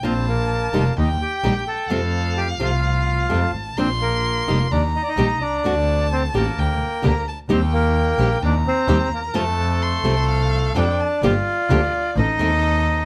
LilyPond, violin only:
\new Staff \with { instrumentName = "Violin" } { \time 4/4 \key f \mixolydian \tempo 4 = 129 a''2 g''2 | f''2. a''4 | c'''2 bes''2 | a''2 g''4 bes''8 a''8 |
g''2 bes''2 | a''4 c'''4 f''4 g''8 a''8 | \key g \minor d''2 ees''2 | }